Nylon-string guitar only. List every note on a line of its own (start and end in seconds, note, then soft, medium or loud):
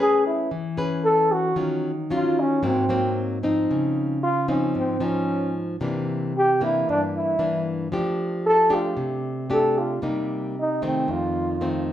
0.00 0.48 A3 medium
0.00 0.51 C#4 soft
0.00 0.51 G#4 soft
0.00 0.51 B4 medium
0.51 1.54 E3 medium
0.77 1.52 C#4 soft
0.77 1.52 G#4 medium
0.77 1.53 B4 medium
1.56 2.60 D#3 medium
1.56 1.90 F#3 medium
1.56 1.91 C#4 soft
1.56 1.90 F4 soft
2.11 2.61 F#3 medium
2.11 2.61 C#4 soft
2.11 2.61 F4 medium
2.63 3.66 G#2 medium
2.63 2.85 F#3 soft
2.63 2.85 A#3 soft
2.63 2.85 C4 medium
2.89 3.38 F#3 medium
2.89 3.38 A#3 medium
2.89 3.38 C4 medium
3.43 4.17 F3 soft
3.43 4.18 C4 soft
3.43 4.18 D#4 medium
3.71 4.72 C#3 medium
4.48 4.96 F3 medium
4.48 4.96 C4 medium
4.48 4.97 D#4 medium
4.75 5.77 G#2 medium
5.00 5.75 F3 medium
5.00 5.76 D#4 medium
5.81 6.83 C3 medium
5.81 6.33 E3 medium
5.81 6.33 A#3 soft
5.81 6.33 D4 medium
6.61 7.35 E3 medium
6.61 7.35 A#3 medium
6.61 7.35 D4 medium
6.89 7.90 G2 medium
7.39 7.87 E3 soft
7.39 7.87 A#3 medium
7.39 7.87 D4 medium
7.92 8.94 F3 medium
7.92 8.67 A3 soft
7.92 8.67 D4 soft
7.92 8.67 G4 medium
8.70 9.45 A3 medium
8.70 9.45 D4 medium
8.70 9.45 G4 medium
8.97 10.00 C3 medium
9.50 9.98 A3 medium
9.50 9.98 D4 medium
9.50 9.99 G4 medium
10.02 11.05 C3 medium
10.02 10.55 G3 medium
10.02 10.55 A#3 soft
10.02 10.55 D#4 soft
10.82 11.57 D#3 medium
10.82 11.57 A3 medium
10.82 11.57 C4 medium
11.08 11.93 F2 medium
11.61 11.93 D#3 medium
11.61 11.93 A3 medium
11.61 11.93 C4 medium